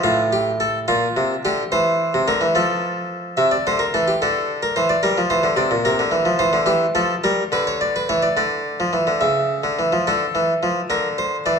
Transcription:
0.04 A2 F4
0.33 G4
0.60 A4
0.88 A#2 F4
1.17 C3
1.45 D3 G4
1.72 E3 C5
2.14 C3
2.28 D3 A#4
2.41 E3
2.55 F3 A4
3.37 C3 E5
3.51 D5
3.67 D3 C5
3.79 A#4
3.94 E3 A4
4.08 G4
4.22 D3 A4
4.63 A#4
4.76 E3 C5
4.89 D5
5.03 G3 A#4
5.18 F3
5.30 E3 C5
5.43 D3
5.56 C3 D5
5.71 A#2
5.85 C3 A#4
5.99 D3
6.11 E3
6.25 F3
6.39 E3 C5
6.53 D3
6.66 E3 G4
6.95 F3 A4
7.24 G3 A#4
7.52 D3 B4
7.67 C#5
7.81 D5
7.96 B4
8.09 E3 C#5
8.23 D5
8.37 D3 D5
8.80 F3
8.93 E3
9.07 D3
9.21 C#3 E5
9.63 D3
9.79 E3
9.92 F3
10.07 D3 A4
10.35 E3
10.63 F3
10.90 D3 A#4
11.18 C5
11.46 E3 D5

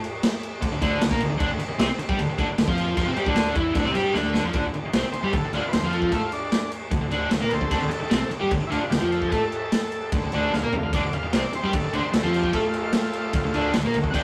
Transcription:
0.04 crash
0.23 snare, crash
0.43 crash
0.62 D2 D3, kick, crash
0.72 D2 D3
0.81 D2 D3 D4, kick, crash
1.01 D2 D3, snare, crash
1.11 A#2 A#3 A#4, kick, snare
1.20 D2 D3, crash
1.30 D2 D3
1.38 D2 D3 D4, kick, crash
1.48 D2 D3
1.59 muted overdriven electric guitar stroke, muted fingered electric bass stroke, crash
1.69 muted overdriven electric guitar stroke, muted fingered electric bass stroke
1.79 C2 C3 C4, snare, crash
1.89 muted overdriven electric guitar stroke, muted fingered electric bass stroke
1.99 muted fingered electric bass stroke, muted overdriven electric guitar stroke, crash
2.09 G2 G3 G4, kick
2.18 D2 D3, crash
2.29 muted fingered electric bass stroke, muted overdriven electric guitar stroke
2.38 D2 D3 D4, kick, crash
2.48 muted fingered electric bass stroke, muted overdriven electric guitar stroke
2.58 D2 D3, snare, crash
2.68 F2 F3 F4, kick
2.78 crash
2.97 F2 F3 F4, kick, crash
3.07 C3 C4 C5
3.17 G2 G3 G4, crash
3.26 D2 D3 D4, kick
3.36 snare, crash
3.55 E2 E3 E4, kick, crash
3.75 D2 D3 D4, kick, crash
3.85 C2 C3 C4
3.95 G2 G3 G4, crash
4.14 D2 D3 D4, snare
4.34 snare
4.44 F2 F3 F4
4.53 D2 D3 D4, kick, crash
4.64 D2 D3
4.74 muted fingered electric bass stroke, muted overdriven electric guitar stroke, crash
4.83 muted fingered electric bass stroke, muted overdriven electric guitar stroke
4.93 C2 C3 C4, snare, crash
5.02 muted fingered electric bass stroke, muted overdriven electric guitar stroke
5.12 C5, muted overdriven electric guitar stroke, muted fingered electric bass stroke, crash
5.23 G2 G3 G4
5.32 D2 D3 A4, kick, crash
5.43 muted fingered electric bass stroke, muted overdriven electric guitar stroke
5.53 D2 D3 D4 F4, crash
5.63 muted fingered electric bass stroke, muted overdriven electric guitar stroke
5.69 B4 C5
5.73 D2 D3, snare, crash
5.82 F2 F3 F4, snare
5.93 A4, crash
6.02 kick
6.11 A2 A3 F4 A4, kick, crash
6.32 D4, crash
6.52 snare, crash
6.72 crash
6.91 D2 D3, kick, crash
7.01 D2 D3
7.11 D2 D3 D4, crash
7.31 D2 D3, snare, crash
7.40 A#2 A#3 A#4, snare
7.49 D2 D3 B4, crash
7.53 A4 C5
7.61 D2 D3, kick
7.70 D2 D3 C4 D4 A4, kick, crash
7.80 D2 D3
7.88 G#4, muted overdriven electric guitar stroke, crash
7.93 A4, muted fingered electric bass stroke
8.00 muted overdriven electric guitar stroke, muted fingered electric bass stroke
8.10 C2 C3 C4, snare, crash
8.21 muted overdriven electric guitar stroke, muted fingered electric bass stroke
8.30 muted overdriven electric guitar stroke, muted fingered electric bass stroke, crash
8.40 G2 G3 G4
8.51 D2 D3, kick, crash
8.61 muted overdriven electric guitar stroke, muted fingered electric bass stroke
8.67 D3 E4
8.71 D2 D4 F4, crash
8.81 muted overdriven electric guitar stroke, muted fingered electric bass stroke
8.91 D2 D3 G4, snare, crash
9.00 F2 F3 F4
9.12 A4, crash
9.22 kick
9.28 A3 G#4
9.32 A2 A4, kick, crash
9.52 crash
9.72 snare, crash
9.92 crash
10.12 D2 D3, kick, crash
10.23 D2 D3
10.32 D2 D3 D4, crash
10.53 D2 D3 F5, snare
10.63 A#2 A#3 A#4
10.73 D2 D3, floor tom
10.83 D2 D3
10.93 D2 D3 D4 D5, kick, crash
11.04 D2 D3
11.13 F5, muted fingered electric bass stroke, muted overdriven electric guitar stroke, crash
11.23 muted overdriven electric guitar stroke, muted fingered electric bass stroke
11.33 C2 C3 C4 D5, snare, crash
11.43 muted overdriven electric guitar stroke, muted fingered electric bass stroke
11.53 C5, muted overdriven electric guitar stroke, muted fingered electric bass stroke, crash
11.64 G2 G3 G4
11.73 D2 D3 A4, kick, crash
11.84 muted fingered electric bass stroke, muted overdriven electric guitar stroke
11.93 D2 D3 D4 C5, crash
12.03 muted fingered electric bass stroke, muted overdriven electric guitar stroke
12.13 D2 D3 A4, snare, crash
12.23 F2 F3 F4, snare
12.34 G4, crash
12.44 kick
12.53 A2 A3 F4 A4, kick, crash
12.74 crash
12.93 snare, crash
13.13 crash
13.33 D2 D3, kick, crash
13.44 D2 D3
13.54 D2 D3 D4, crash
13.73 D2 D3, snare, crash
13.84 A#2 A#3 A#4, snare
13.93 D2 D3, crash
14.04 D2 D3, kick
14.11 D2 D3 D4 F#5, kick, crash
14.15 G5

